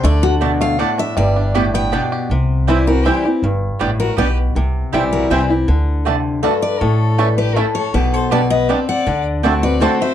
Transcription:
<<
  \new Staff \with { instrumentName = "Steel-string acoustic guitar" } { \time 3/4 \key g \major \tempo 4 = 160 d''8 fis'8 r8 f''8 fis''8 e''8 | d''4. g''4 r8 | r4. bes'8 c''8 r8 | r4. bes'8 b'8 r8 |
r4. bes'8 c''8 r8 | r2 a'8 d''8 | cis''4. b'8 a'8 cis''8 | b'8 c''8 d''8 ees''8 d''8 fis''8~ |
fis''8 r4 d''8 c''8 e''8 | }
  \new Staff \with { instrumentName = "Mandolin" } { \time 3/4 \key g \major r4 <a fis' d'' a''>16 r8. <a fis' d'' a''>16 r8. | r4 <b g' d'' g''>16 r8. <b g' d'' g''>16 r8. | r4 <c' e' c'' g''>16 r8. <c' e' c'' g''>16 r8. | r4 <b g' d'' g''>16 r8. <b g' d'' g''>16 r8. |
r4 <c' e' c'' g''>16 r8. <c' e' c'' g''>16 r8. | r4 <a fis' d'' a''>16 r8. <a fis' d'' a''>16 r8. | r4 <a e' cis'' a''>16 r8. <a e' cis'' a''>16 r8. | r4 <b g' d'' a''>16 r8. <b g' d'' a''>16 r8. |
r4 <c' fis' d'' a''>16 r8. <c' fis' d'' a''>16 r8. | }
  \new Staff \with { instrumentName = "Fiddle" } { \time 3/4 \key g \major r2. | r2. | r4. fis'8 g'8 r8 | r4. fis'8 g'8 r8 |
r4. fis'8 g'8 r8 | r2 fis'8 b'8 | a'4. g'8 e'8 a'8 | g'8 a'8 b'8 b'8 b'8 d''8~ |
d''8 r4 b'8 a'8 c''8 | }
  \new Staff \with { instrumentName = "Five-string banjo" } { \time 3/4 \key g \major a8 d'8 d'8 a8 d'8 d'8 | g8 d'8 g'8 b8 d'8 g'8 | r4 <g c' e'>8 r8 <g c' e'>8 r8 | r4 <g b d'>8 r8 <g b d'>8 r8 |
r4 <g c' e'>8 r8 <g c' e'>8 r8 | r4 <a d'>8 r8 <a d'>8 r8 | r4 <a cis' e'>8 r8 <a cis' e'>8 r8 | r4 <g b d'>8 r8 <g b d'>8 r8 |
r4 <a c' d'>8 r8 <a c' d'>8 r8 | }
  \new Staff \with { instrumentName = "Steel-string acoustic guitar" } { \clef bass \time 3/4 \key g \major << { r2. | r2. | r4 <e g c' e'>8 <c' e'>8 <e g c' e'>8 <c' e'>8 | r2. |
r4 <e g c' e'>4 <e g c' e'>8 <c' e'>8 | r2. | r2. | r2. |
r4 <d a c' fis'>8 <c' fis'>8 <d a c' fis'>8 <c' fis'>8 | } \\ { d4 b,4 a,4 | g,4 a,4 b,4 | c2 r4 | g,4 a,4 b,4 |
c2 r4 | d4 c4 g,4 | a,4 g,4 a,4 | b,4 b,4 c'4 |
d2 r4 | } >> }
  \new Staff \with { instrumentName = "Upright bass" } { \clef bass \time 3/4 \key g \major d,2. | g,,2. | c,2. | g,,4 a,,4 b,,4 |
c,4 b,,4 c,4 | d,2. | a,,2. | b,,2. |
d,2. | }
>>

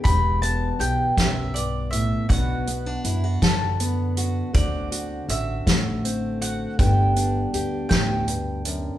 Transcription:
<<
  \new Staff \with { instrumentName = "Mandolin" } { \time 6/8 \key e \minor \tempo 4. = 53 b''8 a''8 g''8 e''8 d''8 e''8 | fis''4. a''4 r8 | d''4 e''4. fis''8 | g''4. g''4. | }
  \new Staff \with { instrumentName = "Steel-string acoustic guitar" } { \time 6/8 \key e \minor << { <b g'>8 b8 g'2 | <b d' fis'>8 b16 d'16 e'16 fis'8. b8 fis'8 | <c' fis'>8 fis'8 fis'4 c'8 fis'8 | <b d' g'>8 d'8 g'2 | } \\ { e,4. fis,8 g,8 a,8 | b,4. d4. | d4. a4. | g,4. a,8 g,8 fis,8 | } >> }
  \new Staff \with { instrumentName = "Upright bass" } { \clef bass \time 6/8 \key e \minor e,,4 b,,8 b,,4. | b,,4 fis,8 fis,4. | d,4 a,,8 a,,4. | g,,4 d,8 d,4. | }
  \new DrumStaff \with { instrumentName = "Drums" } \drummode { \time 6/8 <hh bd>8 hh8 hh8 <hh bd sn>8 hh8 hh8 | <hh bd>8 hh8 hh8 <hh bd sn>8 hh8 hh8 | <hh bd>8 hh8 hh8 <hh bd sn>8 hh8 hh8 | <hh bd>8 hh8 hh8 <hh bd sn>8 hh8 hh8 | }
>>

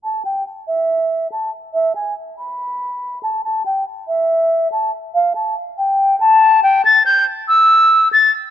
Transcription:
\new Staff \with { instrumentName = "Flute" } { \time 4/4 \key e \phrygian \tempo 4 = 141 a''8 g''8 r8 e''4. a''8 r8 | e''8 gis''8 r8 b''2 a''8 | a''8 g''8 r8 e''4. a''8 r8 | f''8 a''8 r8 g''4 a''4 g''8 |
a'''8 g'''8 r8 e'''4. a'''8 r8 | }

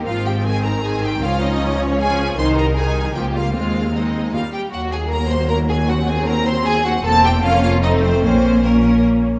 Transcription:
<<
  \new Staff \with { instrumentName = "Violin section" } { \time 3/4 \key aes \major \tempo 4 = 154 f''8 g''8 aes''8 bes''8 aes''8 g''8 | f''8 ees''4 des''8 aes''4 | c'''8 bes''8 aes''4 g''8 f''8 | f''4 ees''4 f''8 g''8 |
\key bes \minor ges''8 aes''8 bes''8 c'''8 bes''8 aes''8 | ges''8 aes''8 bes''8 c'''8 aes''8 ges''8 | a''8 g''8 f''8 f''8 ees''8 c''8 | c''4 bes'4 r4 | }
  \new Staff \with { instrumentName = "Violin section" } { \time 3/4 \key aes \major f'8 g'8 aes'8 bes'8 aes'8 g'8 | f'8 ees'4 des'8 aes'4 | c''8 bes'8 aes'4 g'8 f'8 | f'4 ees'4 f'8 g'8 |
\key bes \minor ges'8 aes'8 bes'8 c''8 bes'8 aes'8 | ges'8 aes'8 bes'8 c''8 aes'8 ges'8 | a'8 g'8 f'8 f'8 ees'8 c'8 | c'4 bes4 r4 | }
  \new Staff \with { instrumentName = "Viola section" } { \time 3/4 \key aes \major << { c'2 c'4 | des'2 des'4 | ees'4 ees'4 bes4 | c'4 c'4 bes8 r8 |
\key bes \minor bes2. | c'2. | c'4 des'4 c'4 | des'4 des'4. r8 | } \\ { f4 ees2 | f2 f4 | ees4 ees4 f8 g8 | aes4 aes4 g8 r8 |
ges2.~ | ges2. | bes4 bes4 a4 | bes4 bes4. r8 | } >> }
  \new Staff \with { instrumentName = "Cello section" } { \clef bass \time 3/4 \key aes \major aes,2. | des,2. | c,2 des,4 | ees,2 ees,8 r8 |
\key bes \minor ees,2.~ | ees,2. | e,4 f,2 | bes,2~ bes,8 r8 | }
  \new Staff \with { instrumentName = "Double bass section" } { \clef bass \time 3/4 \key aes \major aes,,2. | des,2. | c,2 des,4 | ees,2 ees,8 r8 |
\key bes \minor ees,2.~ | ees,2. | e,,4 f,,2 | bes,,2~ bes,,8 r8 | }
>>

